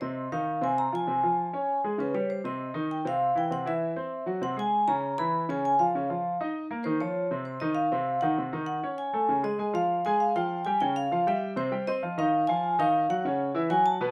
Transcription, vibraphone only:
0.01 D#5
0.32 F5
0.64 G#5
0.78 A#5
0.95 G#5
2.00 B4
2.15 C#5
2.30 C5
2.45 D#5
2.91 G5
3.07 F5
3.38 G5
3.52 F#5
3.68 E5
4.43 F#5
4.59 G#5
4.88 A#5
5.18 B5
5.50 G#5
5.65 G#5
5.79 F5
6.83 A#4 C5
7.00 C#5
7.45 C5
7.60 D#5
7.75 F5
8.21 F#5
8.66 F#5
8.98 G#5
9.44 D#5
9.75 F5
10.05 G#5
10.20 F5
10.36 G5
10.65 G#5
10.81 G5
10.96 F5
11.28 E5
11.57 C5
11.87 D#5
12.19 F5
12.47 G#5
12.80 F5
13.10 F#5
13.70 G#5
13.86 A5

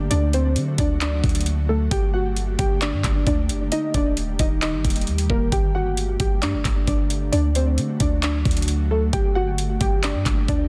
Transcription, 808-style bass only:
0.11 D2
0.56 D3
0.78 D2
1.24 D2
1.91 G1
2.59 G1
2.93 G2
3.04 G1
3.27 D2
3.49 F#1
3.94 D#1
4.39 D#1
4.73 G1
4.85 D#1
5.07 D#2
5.30 D#1
5.52 G1
6.20 G1
6.42 G2
6.54 G1
6.65 G1
6.88 G1
7.33 D2
7.78 D3
8.00 D2
8.45 D2
9.13 G1
9.81 G1
10.15 G2
10.26 G1
10.48 D2

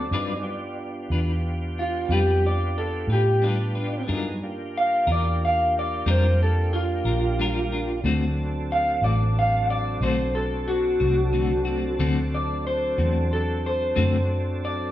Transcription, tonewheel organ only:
0.11 F#3 C4 D#4 G#4
0.42 B3 D4 F4 G4
4.07 F#3 B3 D#4 G#4
4.42 A#3 D4 F4 G4
8.04 F#3 C4 D4 A4
11.97 F#3 C4 D4 A4

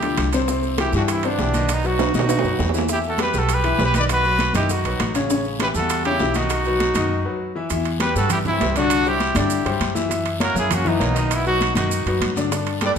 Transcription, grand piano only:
0.02 D3 F3 D4
0.33 C3 C4 C5
0.48 C3 C4 C5
0.79 E3 E4 G4
0.95 E3 E4 G4
1.25 C3 C4 C5
1.40 E3 E4 G4
1.55 D#3 D#4 D#5
1.84 F#3 F#4 B4
2.14 D#3 D#4 D#5
2.45 F#3 F#4 B4
2.74 E3 E4 E5
2.89 E3 E4 E5
3.18 G3 G4 B4
3.34 G3 G4 B4
3.64 E3 E4 E5
3.79 G3 G4 B4
3.95 D#3 D#4 D#5
4.25 F#3 F#4 B4
4.55 D#3 D#4 D#5
4.85 F#3 F#4 B4
5.15 C#3 C#4 C#5
5.31 C#3 C#4 C#5
5.61 E3 E4 G4
5.77 E3 G3 E4
6.06 C#3 C#4 C#5
6.21 E3 E4 G4
6.36 D#3 D#4 D#5
6.66 F#3 F#4 B4
6.96 D#3 D#4 D#5
7.25 F#3 F#4 B4
7.55 E3 E4 E5
7.71 E3 E4 E5
8.00 G3 G4 B4
8.15 G3 G4 B4
8.46 E3 E4 E5
8.62 G3 G4 B4
8.77 D3 D4 D5
9.06 G3 G4 C5
9.36 D3 D4 D5
9.65 G3 G4 C5
9.95 E3 E4 E5
10.09 E3 E4 E5
10.40 A#3 A#4 C#5
10.55 A#3 A#4 C#5
10.85 E3 E4 E5
10.99 A#3 A#4 C#5
11.14 D#3 D#4 D#5
11.46 F#3 F#4 B4
11.76 D#3 D#4 D#5
12.07 F#3 F#4 B4
12.37 D3 D4 D5
12.51 D3 D4 D5
12.82 G3 G4 A4

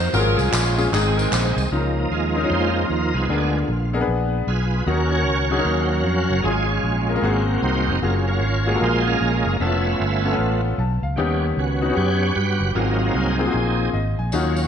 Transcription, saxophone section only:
0.00 C5
0.13 C#4 F4 A#4
0.38 G#4
0.52 G#3 C#4 F4
0.92 C4 D#4 G#4
1.16 A#4
1.32 D#4 G#4 C5

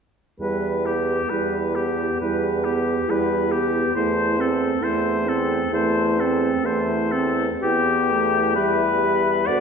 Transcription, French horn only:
0.40 G3
0.87 B3
1.31 G3
1.77 B3
2.22 G3
2.67 B3
3.10 G3
3.53 B3
3.96 A3
4.39 C4
4.83 A3
5.27 C4
5.74 A3
6.20 C4
6.65 A3
7.14 C4
7.63 B3
8.11 A3
8.56 G3
9.49 B3

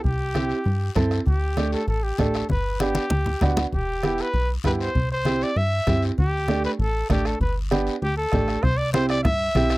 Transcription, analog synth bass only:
0.05 C2
0.66 G2
0.96 G2
1.27 D2
1.87 A1
2.19 A1
2.50 G1
3.11 D2
3.42 D2
3.72 E1
4.34 B1
4.65 G2
4.95 C2
5.56 G2
5.87 G2
6.18 D2
6.79 A1
7.10 A1
7.40 G1
8.02 D2
8.33 A1
8.63 C2
9.25 G2
9.55 B1

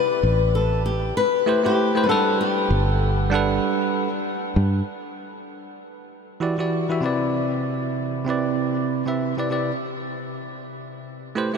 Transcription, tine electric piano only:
1.46 A3 E4 G4 B4 C5
1.64 A3 E4 G4 B4 C5
1.95 A3 E4 G4 B4 C5
2.06 G3 D4 A4 F#5
2.11 B4
3.30 G3 D4 A4 F#5
3.35 B4
6.40 E3 E4 F#4 G4 D5
6.58 E3 E4 F#4 G4 D5
6.89 E3 E4 F#4 G4 E5
7.01 C3 C4 E4 B4
7.06 D5
8.25 C3 C4 E4 B4
8.30 D5
9.06 C3 C4 E4 B4 E5
9.37 C3 C4 E4 B4 D5
9.50 C3 C4 E4 B4 D5
11.35 A3 E4 G4 B4 C5
11.54 A3 E4

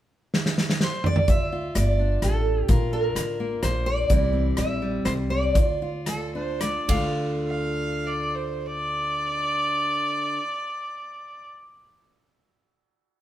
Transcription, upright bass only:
1.28 D2
1.75 G1
2.22 A1
2.69 A#1
3.15 A1
3.63 A#1
4.10 C2
4.58 A#1
5.06 C2
5.55 D2
6.89 D2

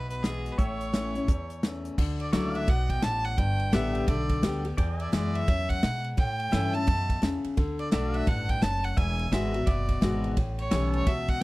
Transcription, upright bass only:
Already playing: B1
0.59 A1
1.28 E2
1.98 D2
2.33 C#2
2.68 B1
3.03 A1
3.38 G1
3.73 A1
4.08 B1
4.43 D2
4.78 E2
5.13 F#2
5.48 E2
5.83 B2
6.18 A2
6.53 G2
6.88 F#2
7.22 E2
7.45 muted upright bass stroke
7.57 D2
7.93 B1
8.27 A1
8.62 F#1
8.97 E1
9.32 G#1
9.67 F#1
10.02 G#1
10.37 A1
10.73 B1
11.07 C#2

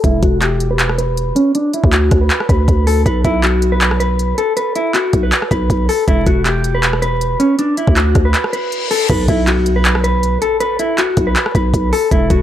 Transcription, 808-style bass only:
0.04 E1
0.23 E1
1.84 D2
2.11 D2
2.49 D2
2.68 D2
3.06 B1
3.25 B1
5.13 B1
5.51 B1
5.70 B1
6.08 E1
6.27 E1
7.87 D2
8.15 D2
9.10 B1
9.28 B1
11.17 B1
11.55 B1
11.74 B1
12.11 E1
12.30 E1

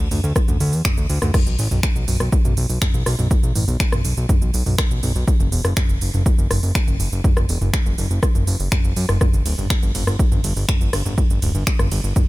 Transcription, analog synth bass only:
0.11 D2
0.24 D2
0.48 D2
0.60 D2
0.73 E2
0.97 D2
1.10 D2
1.22 D2
1.47 B1
1.59 A1
1.71 B1
1.96 B1
2.08 B1
2.20 B1
2.45 B1
2.57 B1
2.70 B1
2.94 B1
3.06 B1
3.19 B1
3.43 B1
3.55 A1
3.68 B1
3.92 B1
4.05 B1
4.17 B1
4.42 B1
4.54 B1
4.66 B1
4.91 B1
5.03 B1
5.15 B1
5.40 F#1
5.52 E1
5.65 F#1
5.89 F#1
6.01 F#1
6.14 F#1
6.38 F#1
6.51 F#1
6.63 F#1
6.88 F#1
7.00 F#1
7.12 F#1
7.37 F#1
7.49 E1
7.61 F#1
7.86 F#1
7.98 F#1
8.11 F#1
8.35 F#1
8.47 F#1
8.60 F#1
8.84 F#1
8.96 F#2
9.09 F#1
9.33 G1
9.46 D1
9.58 G1
9.83 G1
9.95 G1
10.07 G1
10.32 G1
10.44 G1
10.56 G1
10.81 G1
10.93 G1
11.06 G1
11.30 G1
11.42 D1
11.55 G1
11.79 G1
11.92 G1
12.04 G1

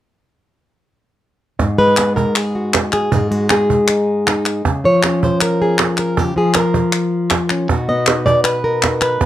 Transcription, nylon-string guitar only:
1.59 G#2
1.78 G#3 B4
1.99 B3
2.16 A#4
2.37 G#4
2.55 F#4
2.93 G#4
3.12 G#2 F4
3.31 G#3 F#4
3.50 G#4
3.89 D#4
4.27 D#4
4.66 C#3
4.84 F3 C#5
5.04 C#4
5.24 C5
5.42 A#4
5.62 G#4
5.99 A#4
6.17 C#3 G4
6.36 F3 G#4
6.56 A#4
7.51 C#4
7.70 B2 B3 D#4 F#4
7.89 B3 D#5
8.10 D#4
8.26 D5
8.44 B4
8.64 A#4
8.85 D#4
9.02 B4
9.21 B2

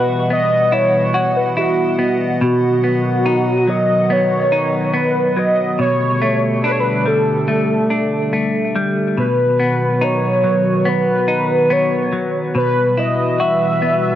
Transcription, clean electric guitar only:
Already playing: B2 B3 E4 F#4
0.30 B3
0.72 E4
1.14 F#4
1.57 E4
1.99 B3
2.41 B2
2.84 B3
3.26 D#4
3.67 F#3
4.10 B3
4.52 D#4
4.94 B3
5.36 F#3
5.79 B2
6.22 A3
6.64 D4
7.06 G3
7.48 A3
7.90 D4
8.33 A3
8.76 G3
9.17 B2
9.60 B3
10.01 D#4
10.44 F#3
10.85 B3
11.28 D#4
11.70 B3
12.12 F#3
12.55 B2
12.97 E4
13.40 F#4
13.82 B3

